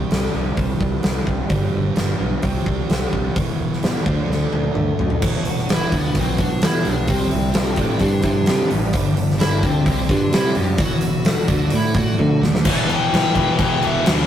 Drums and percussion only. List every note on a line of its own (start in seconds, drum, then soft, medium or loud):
0.11 snare medium
0.11 open hi-hat soft
0.57 kick medium
0.57 open hi-hat soft
0.81 kick medium
1.03 snare loud
1.03 open hi-hat soft
1.27 kick medium
1.50 kick medium
1.50 open hi-hat soft
1.96 snare medium
1.96 open hi-hat soft
2.42 kick medium
2.42 open hi-hat soft
2.66 kick medium
2.90 snare loud
2.90 open hi-hat soft
3.13 kick medium
3.36 kick loud
3.36 open hi-hat soft
3.73 snare soft
3.83 snare loud
3.83 open hi-hat soft
4.06 kick medium
4.31 snare soft
4.53 high tom medium
4.64 high tom medium
4.75 mid tom medium
4.99 floor tom medium
5.10 floor tom medium
5.22 kick loud
5.22 crash loud
5.45 open hi-hat medium
5.58 snare soft
5.69 snare loud
5.69 open hi-hat medium
5.92 kick medium
5.92 open hi-hat medium
6.15 kick medium
6.15 open hi-hat medium
6.38 kick medium
6.38 open hi-hat medium
6.62 snare loud
6.62 open hi-hat medium
6.85 open hi-hat medium
7.08 kick loud
7.08 open hi-hat medium
7.31 open hi-hat medium
7.54 snare loud
7.54 open hi-hat medium
7.76 kick medium
7.76 open hi-hat medium
7.99 kick medium
7.99 open hi-hat medium
8.22 kick medium
8.22 open hi-hat medium
8.46 snare loud
8.46 open hi-hat medium
8.71 open hi-hat medium
8.93 kick loud
8.93 open hi-hat medium
9.17 open hi-hat medium
9.31 snare soft
9.40 snare loud
9.40 open hi-hat medium
9.63 kick medium
9.63 open hi-hat medium
9.86 kick medium
9.86 open hi-hat medium
10.09 kick medium
10.09 open hi-hat medium
10.33 snare loud
10.33 open hi-hat medium
10.55 open hi-hat medium
10.78 kick loud
10.78 open hi-hat medium
11.01 open hi-hat medium
11.25 snare loud
11.25 open hi-hat medium
11.48 kick loud
11.48 open hi-hat medium
11.70 open hi-hat medium
11.94 kick medium
11.94 open hi-hat medium
12.19 high tom medium
12.43 snare medium
12.55 snare medium
12.65 kick loud
12.65 crash loud
12.65 crash medium
12.90 crash medium
13.14 snare loud
13.14 crash medium
13.35 kick medium
13.35 crash medium
13.59 kick loud
13.59 crash medium
13.82 crash medium
14.06 snare loud
14.06 crash medium